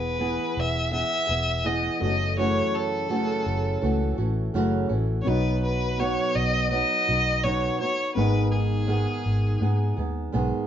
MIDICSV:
0, 0, Header, 1, 5, 480
1, 0, Start_track
1, 0, Key_signature, 4, "major"
1, 0, Tempo, 724113
1, 1575, Time_signature, 4, 2, 24, 8
1, 7072, End_track
2, 0, Start_track
2, 0, Title_t, "Violin"
2, 0, Program_c, 0, 40
2, 0, Note_on_c, 0, 71, 102
2, 395, Note_on_c, 0, 76, 108
2, 405, Note_off_c, 0, 71, 0
2, 615, Note_off_c, 0, 76, 0
2, 619, Note_on_c, 0, 76, 116
2, 1101, Note_on_c, 0, 75, 100
2, 1111, Note_off_c, 0, 76, 0
2, 1336, Note_off_c, 0, 75, 0
2, 1340, Note_on_c, 0, 75, 97
2, 1561, Note_off_c, 0, 75, 0
2, 1582, Note_on_c, 0, 73, 101
2, 1821, Note_on_c, 0, 69, 98
2, 1831, Note_off_c, 0, 73, 0
2, 2778, Note_off_c, 0, 69, 0
2, 3456, Note_on_c, 0, 73, 75
2, 3499, Note_on_c, 0, 71, 102
2, 3509, Note_off_c, 0, 73, 0
2, 3727, Note_off_c, 0, 71, 0
2, 3731, Note_on_c, 0, 71, 104
2, 3973, Note_on_c, 0, 73, 102
2, 3983, Note_off_c, 0, 71, 0
2, 4211, Note_on_c, 0, 75, 111
2, 4221, Note_off_c, 0, 73, 0
2, 4443, Note_off_c, 0, 75, 0
2, 4447, Note_on_c, 0, 75, 118
2, 4929, Note_on_c, 0, 73, 98
2, 4939, Note_off_c, 0, 75, 0
2, 5166, Note_off_c, 0, 73, 0
2, 5170, Note_on_c, 0, 73, 98
2, 5395, Note_off_c, 0, 73, 0
2, 5403, Note_on_c, 0, 71, 93
2, 5631, Note_off_c, 0, 71, 0
2, 5643, Note_on_c, 0, 68, 88
2, 6582, Note_off_c, 0, 68, 0
2, 7072, End_track
3, 0, Start_track
3, 0, Title_t, "Upright piano"
3, 0, Program_c, 1, 0
3, 0, Control_c, 1, 64, 127
3, 0, Note_on_c, 1, 59, 65
3, 0, Note_on_c, 1, 64, 59
3, 0, Note_on_c, 1, 68, 63
3, 0, Note_on_c, 1, 80, 68
3, 1302, Note_off_c, 1, 59, 0
3, 1305, Note_off_c, 1, 64, 0
3, 1310, Note_off_c, 1, 68, 0
3, 1315, Note_off_c, 1, 80, 0
3, 1323, Note_on_c, 1, 57, 67
3, 1332, Note_on_c, 1, 64, 65
3, 1344, Control_c, 1, 64, 0
3, 1344, Note_on_c, 1, 66, 57
3, 1354, Note_on_c, 1, 73, 74
3, 1440, Control_c, 1, 64, 127
3, 3222, Note_off_c, 1, 57, 0
3, 3226, Note_off_c, 1, 64, 0
3, 3232, Note_off_c, 1, 66, 0
3, 3237, Note_off_c, 1, 73, 0
3, 3470, Note_on_c, 1, 59, 65
3, 3483, Note_on_c, 1, 63, 64
3, 3490, Note_on_c, 1, 66, 63
3, 3502, Note_on_c, 1, 75, 76
3, 3504, Control_c, 1, 64, 0
3, 3621, Control_c, 1, 64, 127
3, 5375, Note_off_c, 1, 59, 0
3, 5381, Note_off_c, 1, 63, 0
3, 5385, Note_off_c, 1, 66, 0
3, 5391, Note_off_c, 1, 75, 0
3, 5402, Note_on_c, 1, 59, 66
3, 5413, Note_on_c, 1, 63, 61
3, 5420, Note_on_c, 1, 68, 63
3, 5422, Control_c, 1, 64, 0
3, 5430, Note_on_c, 1, 75, 74
3, 5534, Control_c, 1, 64, 127
3, 7072, Note_off_c, 1, 59, 0
3, 7072, Note_off_c, 1, 63, 0
3, 7072, Note_off_c, 1, 68, 0
3, 7072, Note_off_c, 1, 75, 0
3, 7072, End_track
4, 0, Start_track
4, 0, Title_t, "Nylon-string guitar"
4, 0, Program_c, 2, 24
4, 0, Note_on_c, 2, 52, 72
4, 0, Note_on_c, 2, 59, 75
4, 0, Note_on_c, 2, 64, 77
4, 0, Note_on_c, 2, 68, 96
4, 123, Note_off_c, 2, 52, 0
4, 124, Note_off_c, 2, 59, 0
4, 125, Note_on_c, 2, 52, 76
4, 131, Note_off_c, 2, 68, 0
4, 132, Note_on_c, 2, 59, 78
4, 133, Note_off_c, 2, 64, 0
4, 135, Note_on_c, 2, 64, 77
4, 139, Note_on_c, 2, 68, 80
4, 603, Note_off_c, 2, 52, 0
4, 605, Note_off_c, 2, 59, 0
4, 606, Note_on_c, 2, 52, 63
4, 613, Note_on_c, 2, 59, 58
4, 615, Note_off_c, 2, 64, 0
4, 617, Note_off_c, 2, 68, 0
4, 618, Note_on_c, 2, 64, 66
4, 624, Note_on_c, 2, 68, 74
4, 833, Note_off_c, 2, 68, 0
4, 841, Note_on_c, 2, 68, 60
4, 845, Note_off_c, 2, 64, 0
4, 851, Note_off_c, 2, 52, 0
4, 853, Note_off_c, 2, 59, 0
4, 853, Note_on_c, 2, 64, 47
4, 861, Note_on_c, 2, 59, 50
4, 1086, Note_off_c, 2, 59, 0
4, 1087, Note_on_c, 2, 52, 87
4, 1088, Note_off_c, 2, 68, 0
4, 1089, Note_off_c, 2, 64, 0
4, 1093, Note_on_c, 2, 59, 87
4, 1097, Note_on_c, 2, 64, 88
4, 1099, Note_on_c, 2, 68, 93
4, 1329, Note_off_c, 2, 68, 0
4, 1331, Note_off_c, 2, 52, 0
4, 1332, Note_on_c, 2, 66, 58
4, 1334, Note_off_c, 2, 59, 0
4, 1334, Note_off_c, 2, 64, 0
4, 1337, Note_on_c, 2, 61, 54
4, 1344, Note_on_c, 2, 57, 52
4, 1351, Note_on_c, 2, 52, 52
4, 1569, Note_off_c, 2, 52, 0
4, 1572, Note_off_c, 2, 57, 0
4, 1572, Note_on_c, 2, 42, 73
4, 1573, Note_off_c, 2, 66, 0
4, 1576, Note_off_c, 2, 61, 0
4, 1576, Note_on_c, 2, 49, 82
4, 1577, Note_on_c, 2, 52, 82
4, 1580, Note_on_c, 2, 57, 85
4, 1585, Note_on_c, 2, 66, 90
4, 1586, Note_on_c, 2, 61, 89
4, 2039, Note_off_c, 2, 42, 0
4, 2041, Note_off_c, 2, 49, 0
4, 2046, Note_off_c, 2, 52, 0
4, 2047, Note_on_c, 2, 42, 87
4, 2048, Note_off_c, 2, 61, 0
4, 2049, Note_on_c, 2, 49, 77
4, 2050, Note_off_c, 2, 57, 0
4, 2054, Note_on_c, 2, 52, 76
4, 2056, Note_on_c, 2, 61, 80
4, 2057, Note_off_c, 2, 66, 0
4, 2058, Note_on_c, 2, 57, 82
4, 2059, Note_on_c, 2, 66, 83
4, 2523, Note_off_c, 2, 52, 0
4, 2526, Note_off_c, 2, 57, 0
4, 2531, Note_off_c, 2, 42, 0
4, 2531, Note_on_c, 2, 52, 70
4, 2532, Note_off_c, 2, 49, 0
4, 2533, Note_off_c, 2, 61, 0
4, 2534, Note_on_c, 2, 57, 75
4, 2541, Note_on_c, 2, 61, 74
4, 2544, Note_off_c, 2, 66, 0
4, 2547, Note_on_c, 2, 66, 73
4, 2761, Note_off_c, 2, 66, 0
4, 2764, Note_off_c, 2, 61, 0
4, 2769, Note_on_c, 2, 66, 71
4, 2772, Note_on_c, 2, 61, 60
4, 2773, Note_off_c, 2, 52, 0
4, 2774, Note_off_c, 2, 57, 0
4, 2782, Note_on_c, 2, 57, 55
4, 2787, Note_on_c, 2, 52, 49
4, 3008, Note_off_c, 2, 52, 0
4, 3009, Note_on_c, 2, 42, 99
4, 3010, Note_off_c, 2, 57, 0
4, 3010, Note_off_c, 2, 61, 0
4, 3012, Note_off_c, 2, 66, 0
4, 3012, Note_on_c, 2, 49, 90
4, 3016, Note_on_c, 2, 52, 100
4, 3018, Note_on_c, 2, 57, 93
4, 3018, Note_on_c, 2, 61, 92
4, 3022, Note_on_c, 2, 66, 112
4, 3235, Note_off_c, 2, 66, 0
4, 3239, Note_off_c, 2, 61, 0
4, 3242, Note_on_c, 2, 66, 64
4, 3247, Note_off_c, 2, 57, 0
4, 3247, Note_on_c, 2, 61, 64
4, 3251, Note_off_c, 2, 52, 0
4, 3252, Note_off_c, 2, 42, 0
4, 3253, Note_off_c, 2, 49, 0
4, 3255, Note_on_c, 2, 57, 62
4, 3259, Note_on_c, 2, 52, 62
4, 3480, Note_on_c, 2, 47, 84
4, 3486, Note_off_c, 2, 52, 0
4, 3486, Note_off_c, 2, 66, 0
4, 3487, Note_off_c, 2, 57, 0
4, 3489, Note_on_c, 2, 54, 77
4, 3490, Note_on_c, 2, 59, 85
4, 3491, Note_off_c, 2, 61, 0
4, 3494, Note_on_c, 2, 63, 87
4, 3494, Note_on_c, 2, 66, 101
4, 3957, Note_off_c, 2, 47, 0
4, 3963, Note_off_c, 2, 54, 0
4, 3965, Note_on_c, 2, 47, 82
4, 3969, Note_off_c, 2, 66, 0
4, 3971, Note_on_c, 2, 54, 78
4, 3973, Note_off_c, 2, 59, 0
4, 3973, Note_off_c, 2, 63, 0
4, 3975, Note_on_c, 2, 63, 79
4, 3976, Note_on_c, 2, 59, 83
4, 3977, Note_on_c, 2, 66, 93
4, 4435, Note_off_c, 2, 54, 0
4, 4443, Note_on_c, 2, 54, 68
4, 4448, Note_off_c, 2, 59, 0
4, 4449, Note_off_c, 2, 47, 0
4, 4450, Note_on_c, 2, 59, 69
4, 4452, Note_off_c, 2, 66, 0
4, 4456, Note_off_c, 2, 63, 0
4, 4459, Note_on_c, 2, 63, 71
4, 4460, Note_on_c, 2, 66, 67
4, 4683, Note_off_c, 2, 66, 0
4, 4688, Note_off_c, 2, 54, 0
4, 4691, Note_on_c, 2, 66, 61
4, 4692, Note_off_c, 2, 59, 0
4, 4693, Note_off_c, 2, 63, 0
4, 4701, Note_on_c, 2, 63, 51
4, 4707, Note_on_c, 2, 59, 47
4, 4927, Note_off_c, 2, 59, 0
4, 4929, Note_on_c, 2, 47, 82
4, 4932, Note_off_c, 2, 63, 0
4, 4932, Note_off_c, 2, 66, 0
4, 4935, Note_on_c, 2, 54, 78
4, 4935, Note_on_c, 2, 59, 78
4, 4940, Note_on_c, 2, 63, 84
4, 4942, Note_on_c, 2, 66, 92
4, 5160, Note_off_c, 2, 66, 0
4, 5168, Note_on_c, 2, 66, 57
4, 5171, Note_off_c, 2, 47, 0
4, 5173, Note_off_c, 2, 63, 0
4, 5174, Note_off_c, 2, 54, 0
4, 5174, Note_off_c, 2, 59, 0
4, 5181, Note_on_c, 2, 63, 50
4, 5184, Note_on_c, 2, 59, 49
4, 5409, Note_on_c, 2, 44, 77
4, 5411, Note_off_c, 2, 66, 0
4, 5412, Note_off_c, 2, 59, 0
4, 5412, Note_off_c, 2, 63, 0
4, 5414, Note_on_c, 2, 51, 85
4, 5416, Note_on_c, 2, 56, 90
4, 5420, Note_on_c, 2, 59, 82
4, 5420, Note_on_c, 2, 63, 83
4, 5423, Note_on_c, 2, 68, 93
4, 5872, Note_off_c, 2, 44, 0
4, 5877, Note_off_c, 2, 51, 0
4, 5880, Note_on_c, 2, 44, 80
4, 5885, Note_off_c, 2, 56, 0
4, 5885, Note_on_c, 2, 51, 80
4, 5887, Note_off_c, 2, 59, 0
4, 5887, Note_off_c, 2, 63, 0
4, 5888, Note_on_c, 2, 56, 80
4, 5890, Note_on_c, 2, 59, 80
4, 5895, Note_on_c, 2, 63, 80
4, 5896, Note_off_c, 2, 68, 0
4, 5898, Note_on_c, 2, 68, 84
4, 6365, Note_off_c, 2, 56, 0
4, 6366, Note_off_c, 2, 44, 0
4, 6368, Note_on_c, 2, 56, 65
4, 6369, Note_off_c, 2, 51, 0
4, 6370, Note_off_c, 2, 63, 0
4, 6372, Note_off_c, 2, 59, 0
4, 6374, Note_on_c, 2, 59, 72
4, 6378, Note_on_c, 2, 63, 74
4, 6381, Note_off_c, 2, 68, 0
4, 6383, Note_on_c, 2, 68, 77
4, 6598, Note_off_c, 2, 68, 0
4, 6603, Note_off_c, 2, 63, 0
4, 6606, Note_on_c, 2, 68, 67
4, 6610, Note_off_c, 2, 56, 0
4, 6611, Note_off_c, 2, 59, 0
4, 6611, Note_on_c, 2, 63, 53
4, 6619, Note_on_c, 2, 59, 53
4, 6624, Note_on_c, 2, 56, 52
4, 6843, Note_off_c, 2, 59, 0
4, 6844, Note_off_c, 2, 56, 0
4, 6844, Note_on_c, 2, 44, 86
4, 6846, Note_off_c, 2, 63, 0
4, 6846, Note_on_c, 2, 51, 85
4, 6850, Note_off_c, 2, 68, 0
4, 6851, Note_on_c, 2, 59, 94
4, 6852, Note_on_c, 2, 56, 102
4, 6854, Note_on_c, 2, 63, 99
4, 6858, Note_on_c, 2, 68, 89
4, 7072, Note_off_c, 2, 44, 0
4, 7072, Note_off_c, 2, 51, 0
4, 7072, Note_off_c, 2, 56, 0
4, 7072, Note_off_c, 2, 59, 0
4, 7072, Note_off_c, 2, 63, 0
4, 7072, Note_off_c, 2, 68, 0
4, 7072, End_track
5, 0, Start_track
5, 0, Title_t, "Fingered electric bass"
5, 0, Program_c, 3, 33
5, 0, Note_on_c, 3, 28, 97
5, 243, Note_off_c, 3, 28, 0
5, 377, Note_on_c, 3, 28, 89
5, 682, Note_off_c, 3, 28, 0
5, 854, Note_on_c, 3, 28, 96
5, 1248, Note_off_c, 3, 28, 0
5, 1334, Note_on_c, 3, 30, 98
5, 1728, Note_off_c, 3, 30, 0
5, 2293, Note_on_c, 3, 30, 97
5, 2491, Note_off_c, 3, 30, 0
5, 2538, Note_on_c, 3, 37, 101
5, 2733, Note_off_c, 3, 37, 0
5, 2771, Note_on_c, 3, 33, 90
5, 2969, Note_off_c, 3, 33, 0
5, 3013, Note_on_c, 3, 30, 90
5, 3210, Note_off_c, 3, 30, 0
5, 3250, Note_on_c, 3, 33, 97
5, 3449, Note_off_c, 3, 33, 0
5, 3493, Note_on_c, 3, 35, 111
5, 4079, Note_off_c, 3, 35, 0
5, 4212, Note_on_c, 3, 35, 99
5, 4518, Note_off_c, 3, 35, 0
5, 4698, Note_on_c, 3, 35, 91
5, 5090, Note_off_c, 3, 35, 0
5, 5415, Note_on_c, 3, 32, 115
5, 6000, Note_off_c, 3, 32, 0
5, 6136, Note_on_c, 3, 32, 86
5, 6331, Note_off_c, 3, 32, 0
5, 6374, Note_on_c, 3, 44, 111
5, 6570, Note_off_c, 3, 44, 0
5, 6613, Note_on_c, 3, 39, 90
5, 6810, Note_off_c, 3, 39, 0
5, 6853, Note_on_c, 3, 35, 92
5, 6961, Note_off_c, 3, 35, 0
5, 7072, End_track
0, 0, End_of_file